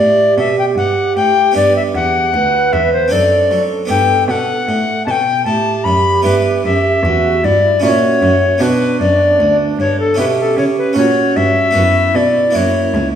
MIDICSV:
0, 0, Header, 1, 5, 480
1, 0, Start_track
1, 0, Tempo, 782269
1, 959, Time_signature, 3, 2, 24, 8
1, 3354, Tempo, 788436
1, 8034, End_track
2, 0, Start_track
2, 0, Title_t, "Recorder"
2, 0, Program_c, 0, 74
2, 0, Note_on_c, 0, 74, 61
2, 226, Note_off_c, 0, 74, 0
2, 237, Note_on_c, 0, 76, 58
2, 355, Note_off_c, 0, 76, 0
2, 360, Note_on_c, 0, 79, 66
2, 397, Note_off_c, 0, 79, 0
2, 471, Note_on_c, 0, 78, 63
2, 711, Note_off_c, 0, 78, 0
2, 714, Note_on_c, 0, 79, 69
2, 951, Note_off_c, 0, 79, 0
2, 960, Note_on_c, 0, 74, 64
2, 1077, Note_off_c, 0, 74, 0
2, 1081, Note_on_c, 0, 76, 60
2, 1118, Note_off_c, 0, 76, 0
2, 1197, Note_on_c, 0, 78, 68
2, 1672, Note_on_c, 0, 76, 59
2, 1681, Note_off_c, 0, 78, 0
2, 1792, Note_off_c, 0, 76, 0
2, 1796, Note_on_c, 0, 72, 65
2, 1913, Note_on_c, 0, 74, 74
2, 1922, Note_off_c, 0, 72, 0
2, 2225, Note_off_c, 0, 74, 0
2, 2390, Note_on_c, 0, 79, 70
2, 2614, Note_off_c, 0, 79, 0
2, 2622, Note_on_c, 0, 79, 69
2, 2641, Note_on_c, 0, 78, 75
2, 2647, Note_off_c, 0, 79, 0
2, 3098, Note_off_c, 0, 78, 0
2, 3106, Note_on_c, 0, 81, 69
2, 3133, Note_on_c, 0, 79, 75
2, 3140, Note_off_c, 0, 81, 0
2, 3342, Note_off_c, 0, 79, 0
2, 3346, Note_on_c, 0, 81, 78
2, 3582, Note_on_c, 0, 83, 77
2, 3591, Note_off_c, 0, 81, 0
2, 3822, Note_off_c, 0, 83, 0
2, 3826, Note_on_c, 0, 71, 71
2, 4067, Note_off_c, 0, 71, 0
2, 4072, Note_on_c, 0, 76, 74
2, 4559, Note_on_c, 0, 74, 73
2, 4568, Note_off_c, 0, 76, 0
2, 4792, Note_off_c, 0, 74, 0
2, 4796, Note_on_c, 0, 74, 72
2, 4825, Note_on_c, 0, 73, 78
2, 4831, Note_off_c, 0, 74, 0
2, 5271, Note_on_c, 0, 71, 65
2, 5280, Note_off_c, 0, 73, 0
2, 5504, Note_off_c, 0, 71, 0
2, 5508, Note_on_c, 0, 74, 76
2, 5852, Note_off_c, 0, 74, 0
2, 5991, Note_on_c, 0, 73, 76
2, 6109, Note_off_c, 0, 73, 0
2, 6113, Note_on_c, 0, 69, 70
2, 6224, Note_off_c, 0, 69, 0
2, 6228, Note_on_c, 0, 71, 81
2, 6264, Note_off_c, 0, 71, 0
2, 6356, Note_on_c, 0, 69, 63
2, 6464, Note_off_c, 0, 69, 0
2, 6468, Note_on_c, 0, 73, 66
2, 6504, Note_off_c, 0, 73, 0
2, 6588, Note_on_c, 0, 71, 68
2, 6702, Note_off_c, 0, 71, 0
2, 6706, Note_on_c, 0, 73, 72
2, 6944, Note_on_c, 0, 76, 71
2, 6953, Note_off_c, 0, 73, 0
2, 7427, Note_on_c, 0, 74, 58
2, 7436, Note_off_c, 0, 76, 0
2, 7670, Note_on_c, 0, 73, 68
2, 7679, Note_off_c, 0, 74, 0
2, 7987, Note_off_c, 0, 73, 0
2, 8034, End_track
3, 0, Start_track
3, 0, Title_t, "Flute"
3, 0, Program_c, 1, 73
3, 0, Note_on_c, 1, 67, 60
3, 1435, Note_off_c, 1, 67, 0
3, 1444, Note_on_c, 1, 71, 61
3, 1921, Note_on_c, 1, 69, 51
3, 1930, Note_off_c, 1, 71, 0
3, 3186, Note_off_c, 1, 69, 0
3, 3359, Note_on_c, 1, 67, 53
3, 4294, Note_off_c, 1, 67, 0
3, 4323, Note_on_c, 1, 66, 66
3, 4557, Note_on_c, 1, 64, 58
3, 4566, Note_off_c, 1, 66, 0
3, 4797, Note_on_c, 1, 66, 54
3, 4806, Note_off_c, 1, 64, 0
3, 5266, Note_off_c, 1, 66, 0
3, 5270, Note_on_c, 1, 62, 66
3, 6209, Note_off_c, 1, 62, 0
3, 6223, Note_on_c, 1, 67, 57
3, 6695, Note_off_c, 1, 67, 0
3, 6703, Note_on_c, 1, 66, 63
3, 7174, Note_off_c, 1, 66, 0
3, 7189, Note_on_c, 1, 64, 63
3, 7970, Note_off_c, 1, 64, 0
3, 8034, End_track
4, 0, Start_track
4, 0, Title_t, "Harpsichord"
4, 0, Program_c, 2, 6
4, 0, Note_on_c, 2, 45, 37
4, 0, Note_on_c, 2, 64, 32
4, 0, Note_on_c, 2, 67, 31
4, 210, Note_off_c, 2, 45, 0
4, 233, Note_on_c, 2, 47, 38
4, 452, Note_off_c, 2, 47, 0
4, 478, Note_on_c, 2, 43, 37
4, 695, Note_off_c, 2, 43, 0
4, 718, Note_on_c, 2, 45, 42
4, 922, Note_off_c, 2, 64, 0
4, 927, Note_off_c, 2, 67, 0
4, 930, Note_on_c, 2, 59, 37
4, 935, Note_off_c, 2, 45, 0
4, 939, Note_on_c, 2, 62, 37
4, 948, Note_on_c, 2, 67, 35
4, 958, Note_on_c, 2, 43, 38
4, 1173, Note_off_c, 2, 43, 0
4, 1176, Note_off_c, 2, 59, 0
4, 1181, Note_off_c, 2, 62, 0
4, 1198, Note_on_c, 2, 40, 37
4, 1413, Note_off_c, 2, 40, 0
4, 1436, Note_on_c, 2, 38, 40
4, 1652, Note_off_c, 2, 38, 0
4, 1677, Note_on_c, 2, 40, 42
4, 1886, Note_off_c, 2, 67, 0
4, 1889, Note_on_c, 2, 60, 37
4, 1892, Note_off_c, 2, 40, 0
4, 1901, Note_on_c, 2, 62, 36
4, 1908, Note_on_c, 2, 69, 32
4, 1917, Note_on_c, 2, 42, 37
4, 2132, Note_off_c, 2, 42, 0
4, 2155, Note_on_c, 2, 54, 46
4, 2365, Note_on_c, 2, 59, 38
4, 2366, Note_off_c, 2, 60, 0
4, 2367, Note_off_c, 2, 62, 0
4, 2370, Note_off_c, 2, 54, 0
4, 2375, Note_off_c, 2, 69, 0
4, 2375, Note_on_c, 2, 62, 38
4, 2383, Note_on_c, 2, 67, 38
4, 2392, Note_on_c, 2, 43, 44
4, 2608, Note_off_c, 2, 43, 0
4, 2635, Note_on_c, 2, 47, 41
4, 2843, Note_off_c, 2, 59, 0
4, 2848, Note_off_c, 2, 62, 0
4, 2850, Note_off_c, 2, 47, 0
4, 2876, Note_on_c, 2, 45, 40
4, 3091, Note_off_c, 2, 45, 0
4, 3120, Note_on_c, 2, 47, 44
4, 3333, Note_off_c, 2, 47, 0
4, 3354, Note_on_c, 2, 45, 43
4, 3569, Note_off_c, 2, 45, 0
4, 3596, Note_on_c, 2, 42, 46
4, 3805, Note_off_c, 2, 67, 0
4, 3812, Note_off_c, 2, 42, 0
4, 3813, Note_on_c, 2, 59, 41
4, 3819, Note_on_c, 2, 64, 40
4, 3830, Note_on_c, 2, 67, 40
4, 3837, Note_on_c, 2, 43, 44
4, 4054, Note_off_c, 2, 43, 0
4, 4058, Note_off_c, 2, 59, 0
4, 4079, Note_on_c, 2, 42, 40
4, 4293, Note_off_c, 2, 42, 0
4, 4319, Note_on_c, 2, 40, 45
4, 4532, Note_off_c, 2, 40, 0
4, 4559, Note_on_c, 2, 43, 48
4, 4761, Note_off_c, 2, 64, 0
4, 4766, Note_off_c, 2, 67, 0
4, 4772, Note_off_c, 2, 43, 0
4, 4773, Note_on_c, 2, 61, 42
4, 4782, Note_on_c, 2, 64, 43
4, 4791, Note_on_c, 2, 66, 37
4, 4799, Note_on_c, 2, 46, 45
4, 5012, Note_off_c, 2, 46, 0
4, 5035, Note_on_c, 2, 42, 43
4, 5247, Note_off_c, 2, 61, 0
4, 5249, Note_off_c, 2, 42, 0
4, 5250, Note_on_c, 2, 59, 39
4, 5251, Note_off_c, 2, 64, 0
4, 5256, Note_off_c, 2, 66, 0
4, 5259, Note_on_c, 2, 62, 45
4, 5266, Note_on_c, 2, 66, 41
4, 5276, Note_on_c, 2, 47, 51
4, 5489, Note_off_c, 2, 47, 0
4, 5513, Note_on_c, 2, 42, 48
4, 5727, Note_off_c, 2, 42, 0
4, 5751, Note_on_c, 2, 38, 47
4, 5966, Note_off_c, 2, 38, 0
4, 5993, Note_on_c, 2, 43, 45
4, 6194, Note_off_c, 2, 59, 0
4, 6199, Note_off_c, 2, 62, 0
4, 6201, Note_on_c, 2, 61, 37
4, 6202, Note_off_c, 2, 66, 0
4, 6207, Note_off_c, 2, 43, 0
4, 6213, Note_on_c, 2, 64, 40
4, 6221, Note_on_c, 2, 67, 42
4, 6231, Note_on_c, 2, 47, 44
4, 6446, Note_off_c, 2, 47, 0
4, 6469, Note_on_c, 2, 49, 49
4, 6673, Note_off_c, 2, 61, 0
4, 6681, Note_on_c, 2, 61, 42
4, 6684, Note_off_c, 2, 49, 0
4, 6685, Note_off_c, 2, 64, 0
4, 6689, Note_off_c, 2, 67, 0
4, 6689, Note_on_c, 2, 66, 41
4, 6709, Note_on_c, 2, 46, 46
4, 6923, Note_off_c, 2, 46, 0
4, 6947, Note_on_c, 2, 43, 45
4, 7154, Note_on_c, 2, 59, 37
4, 7156, Note_off_c, 2, 66, 0
4, 7158, Note_off_c, 2, 61, 0
4, 7162, Note_off_c, 2, 43, 0
4, 7163, Note_on_c, 2, 66, 36
4, 7181, Note_on_c, 2, 42, 42
4, 7400, Note_off_c, 2, 42, 0
4, 7425, Note_on_c, 2, 47, 40
4, 7638, Note_off_c, 2, 59, 0
4, 7640, Note_on_c, 2, 58, 34
4, 7643, Note_off_c, 2, 66, 0
4, 7644, Note_off_c, 2, 47, 0
4, 7649, Note_on_c, 2, 64, 38
4, 7660, Note_on_c, 2, 66, 38
4, 7669, Note_on_c, 2, 42, 41
4, 7889, Note_off_c, 2, 42, 0
4, 7910, Note_on_c, 2, 37, 44
4, 8034, Note_off_c, 2, 37, 0
4, 8034, Note_off_c, 2, 58, 0
4, 8034, Note_off_c, 2, 64, 0
4, 8034, Note_off_c, 2, 66, 0
4, 8034, End_track
5, 0, Start_track
5, 0, Title_t, "Cello"
5, 0, Program_c, 3, 42
5, 0, Note_on_c, 3, 45, 54
5, 217, Note_off_c, 3, 45, 0
5, 232, Note_on_c, 3, 47, 52
5, 459, Note_off_c, 3, 47, 0
5, 467, Note_on_c, 3, 43, 50
5, 696, Note_off_c, 3, 43, 0
5, 716, Note_on_c, 3, 45, 51
5, 941, Note_off_c, 3, 45, 0
5, 957, Note_on_c, 3, 43, 57
5, 1180, Note_off_c, 3, 43, 0
5, 1196, Note_on_c, 3, 40, 51
5, 1420, Note_off_c, 3, 40, 0
5, 1433, Note_on_c, 3, 38, 57
5, 1658, Note_off_c, 3, 38, 0
5, 1678, Note_on_c, 3, 40, 51
5, 1900, Note_off_c, 3, 40, 0
5, 1916, Note_on_c, 3, 42, 55
5, 2138, Note_off_c, 3, 42, 0
5, 2156, Note_on_c, 3, 54, 52
5, 2377, Note_off_c, 3, 54, 0
5, 2394, Note_on_c, 3, 43, 60
5, 2616, Note_off_c, 3, 43, 0
5, 2628, Note_on_c, 3, 47, 53
5, 2853, Note_off_c, 3, 47, 0
5, 2871, Note_on_c, 3, 45, 58
5, 3095, Note_off_c, 3, 45, 0
5, 3114, Note_on_c, 3, 47, 61
5, 3337, Note_off_c, 3, 47, 0
5, 3351, Note_on_c, 3, 45, 56
5, 3575, Note_off_c, 3, 45, 0
5, 3588, Note_on_c, 3, 42, 57
5, 3815, Note_off_c, 3, 42, 0
5, 3831, Note_on_c, 3, 43, 61
5, 4058, Note_off_c, 3, 43, 0
5, 4074, Note_on_c, 3, 42, 58
5, 4298, Note_off_c, 3, 42, 0
5, 4310, Note_on_c, 3, 40, 62
5, 4534, Note_off_c, 3, 40, 0
5, 4555, Note_on_c, 3, 43, 59
5, 4776, Note_off_c, 3, 43, 0
5, 4793, Note_on_c, 3, 46, 61
5, 5016, Note_off_c, 3, 46, 0
5, 5030, Note_on_c, 3, 42, 65
5, 5253, Note_off_c, 3, 42, 0
5, 5266, Note_on_c, 3, 47, 62
5, 5491, Note_off_c, 3, 47, 0
5, 5508, Note_on_c, 3, 42, 60
5, 5731, Note_off_c, 3, 42, 0
5, 5746, Note_on_c, 3, 38, 65
5, 5971, Note_off_c, 3, 38, 0
5, 5988, Note_on_c, 3, 43, 56
5, 6211, Note_off_c, 3, 43, 0
5, 6224, Note_on_c, 3, 47, 55
5, 6449, Note_off_c, 3, 47, 0
5, 6463, Note_on_c, 3, 49, 56
5, 6688, Note_off_c, 3, 49, 0
5, 6701, Note_on_c, 3, 46, 66
5, 6926, Note_off_c, 3, 46, 0
5, 6946, Note_on_c, 3, 43, 59
5, 7169, Note_off_c, 3, 43, 0
5, 7180, Note_on_c, 3, 42, 62
5, 7407, Note_off_c, 3, 42, 0
5, 7425, Note_on_c, 3, 47, 60
5, 7651, Note_off_c, 3, 47, 0
5, 7669, Note_on_c, 3, 42, 52
5, 7896, Note_off_c, 3, 42, 0
5, 7906, Note_on_c, 3, 37, 49
5, 8034, Note_off_c, 3, 37, 0
5, 8034, End_track
0, 0, End_of_file